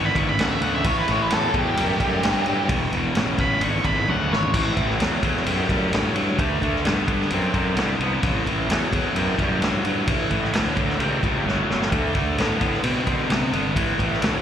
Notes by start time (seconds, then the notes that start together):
Already playing: G#1 E2 D3
0.05 B5
0.15 G#1 E2 D3 C#6, kick, ride
0.29 B5
0.38 D2 E2 C#3 F#5, snare, ride
0.52 E5
0.61 D2 E2 C#3 F#5, ride
0.75 E5
0.84 A1 A2 E3 C#5, kick, ride
0.99 B4
1.07 A1 A2 E3 C#5, ride
1.22 B4
1.30 E2 A2 F#3 A4, snare, ride
1.53 E2 A2 F#3 G4, kick, ride
1.77 F#2 A2 G3, ride
1.99 F#2 A2 G3, kick, ride
2.22 G2 A2 F#3, snare, ride
2.46 G2 A2 F#3, ride
2.68 E1 E2 B2, kick, ride
2.93 E1 E2 B2, ride
3.15 A1 E2 C#3, snare, ride
3.38 E2 C#3 B5, kick, ride
3.61 G#1 E2 D3 C#6, ride
3.84 G#1 E2 D3 B5, kick, ride
4.07 D2 E2 C#3 F#5, high tom
4.30 G#1 E2 C#3 C#5, snare
4.42 floor tom
4.53 A1 A2 E3, kick, crash
4.76 A1 A2 E3, kick, ride
4.90 snare
4.99 E2 A2 F#3, snare, ride
5.22 E2 A2 F#3, kick, ride
5.37 snare
5.46 F#2 A2 G3, ride
5.69 F#2 A2 G3, kick, ride
5.91 G2 A2 F#3, snare, ride
6.14 G2 A2 F#3, ride
6.38 D2 D3 A3, kick, ride
6.61 D2 D3 A3, kick, ride
6.76 snare
6.84 G2 D3 B3, snare, ride
7.08 D3 B3, kick, ride
7.21 snare
7.30 F#2 D3 C4, ride
7.54 F#2 D3 C4, kick, ride
7.76 C2 D3 B3, snare, ride
8.00 C2 D3 B3, ride
8.23 A1 A2 E3, kick, ride
8.46 A1 A2 E3, kick, ride
8.69 E2 A2 F#3, snare, ride
8.92 E2 A2 F#3, kick, ride
9.14 F#2 A2 G3, ride
9.38 F#2 A2 G3, kick, ride
9.60 G2 A2 F#3, snare, ride
9.84 G2 A2 F#3, ride
10.07 A1 A2 E3, kick, ride
10.30 A1 A2 E3, kick, ride
10.45 snare
10.53 D2 A2 F#3, snare, ride
10.75 A2 F#3, kick, ride
10.90 snare
10.99 C#2 A2 G3, ride
11.22 C#2 A2 G3, kick, ride
11.44 G1 A2 F#3, snare
11.68 G1 A2 F#3, snare
11.82 snare
11.92 D2 D3 A3, kick, ride
12.15 D2 D3 A3, kick, ride
12.38 A2 D3 B3, snare, ride
12.60 A2 D3 B3, kick, ride
12.74 snare
12.83 B2 D3 C4, ride
13.06 B2 D3 C4, kick, ride
13.29 C3 D3 B3, snare, ride
13.52 G1 D3 B3, ride
13.75 A1 A2 E3, kick, ride
13.98 A1 A2 E3, kick, ride
14.13 snare
14.22 D2 A2 F#3, snare, ride